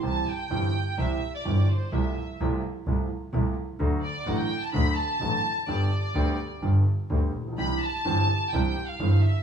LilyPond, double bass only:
\new Staff \with { instrumentName = "Double bass" } { \clef bass \time 4/4 \key c \major \tempo 4 = 127 c,8 r8 g,,8 r8 c,8 r8 g,,8 r8 | c,8 r8 c,8 r8 c,8 r8 c,8 r8 | d,8 r8 a,,8 r8 d,8 r8 a,,8 r8 | g,,8 r8 d,8 r8 g,,8 r8 d,8 bes,,8 |
c,8 r8 g,,8 r8 c,8 r8 g,,8 r8 | }